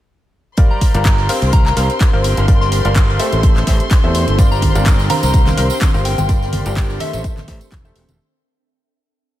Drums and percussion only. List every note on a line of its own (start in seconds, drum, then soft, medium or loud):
0.57 kick loud
0.57 closed hi-hat medium
0.81 kick medium
0.81 closed hi-hat medium
0.81 open hi-hat loud
0.94 closed hi-hat medium
1.05 kick loud
1.05 snare loud
1.05 clap loud
1.05 closed hi-hat medium
1.18 snare medium
1.29 open hi-hat loud
1.29 open hi-hat medium
1.42 snare soft
1.42 closed hi-hat medium
1.52 kick loud
1.52 closed hi-hat loud
1.52 closed hi-hat medium
1.66 snare medium
1.66 clap soft
1.76 snare soft
1.76 closed hi-hat medium
1.76 open hi-hat loud
1.90 closed hi-hat medium
2.01 kick loud
2.01 snare loud
2.01 clap loud
2.01 closed hi-hat medium
2.24 closed hi-hat medium
2.24 open hi-hat loud
2.37 closed hi-hat medium
2.48 kick loud
2.48 closed hi-hat medium
2.61 snare soft
2.72 snare soft
2.72 closed hi-hat medium
2.72 open hi-hat loud
2.85 closed hi-hat medium
2.96 kick loud
2.96 snare loud
2.96 clap loud
2.96 closed hi-hat medium
3.10 snare soft
3.19 closed hi-hat medium
3.19 open hi-hat loud
3.32 closed hi-hat medium
3.43 kick loud
3.43 closed hi-hat medium
3.56 snare medium
3.56 clap soft
3.67 kick medium
3.67 snare medium
3.67 closed hi-hat medium
3.67 open hi-hat loud
3.80 closed hi-hat medium
3.90 kick loud
3.90 snare loud
3.90 clap loud
3.90 closed hi-hat medium
4.15 closed hi-hat medium
4.15 open hi-hat loud
4.28 closed hi-hat medium
4.39 kick loud
4.39 closed hi-hat medium
4.39 tambourine medium
4.52 tambourine soft
4.62 kick medium
4.62 closed hi-hat medium
4.62 open hi-hat loud
4.62 high conga medium
4.75 closed hi-hat medium
4.75 tambourine medium
4.86 kick loud
4.86 snare loud
4.86 clap loud
4.86 closed hi-hat medium
4.86 tambourine medium
4.99 snare medium
4.99 tambourine soft
5.10 open hi-hat loud
5.10 open hi-hat medium
5.10 high conga medium
5.23 snare medium
5.23 closed hi-hat medium
5.23 tambourine medium
5.34 kick loud
5.34 closed hi-hat medium
5.34 tambourine medium
5.46 snare medium
5.46 clap soft
5.46 tambourine soft
5.46 high conga loud
5.57 snare soft
5.57 closed hi-hat medium
5.57 open hi-hat loud
5.70 closed hi-hat medium
5.70 tambourine medium
5.81 kick loud
5.81 snare loud
5.81 clap loud
5.81 closed hi-hat medium
5.81 tambourine medium
5.81 high conga medium
5.94 tambourine soft
6.05 closed hi-hat medium
6.05 open hi-hat loud
6.18 closed hi-hat medium
6.18 tambourine medium
6.18 high conga loud
6.29 kick loud
6.29 closed hi-hat medium
6.29 tambourine medium
6.42 snare soft
6.42 tambourine soft
6.53 snare medium
6.53 closed hi-hat medium
6.53 open hi-hat loud
6.53 high conga loud
6.66 closed hi-hat soft
6.66 tambourine medium
6.76 kick loud
6.76 snare loud
6.76 clap loud
6.76 closed hi-hat medium
6.76 tambourine medium
6.90 snare soft
6.90 tambourine soft
7.00 closed hi-hat medium
7.00 open hi-hat loud
7.00 high conga medium
7.13 closed hi-hat medium
7.13 tambourine medium
7.24 kick loud
7.24 closed hi-hat medium
7.24 tambourine medium
7.37 snare medium
7.37 clap soft
7.37 tambourine soft
7.37 high conga medium
7.48 kick medium
7.48 snare medium
7.48 closed hi-hat medium
7.48 open hi-hat loud
7.61 closed hi-hat medium
7.61 tambourine medium
7.72 kick loud
7.72 snare loud
7.72 clap loud
7.72 closed hi-hat medium
7.72 tambourine medium
7.72 high conga medium
7.85 tambourine soft
7.96 closed hi-hat medium
7.96 open hi-hat loud
8.08 closed hi-hat medium
8.08 tambourine medium
8.08 high conga medium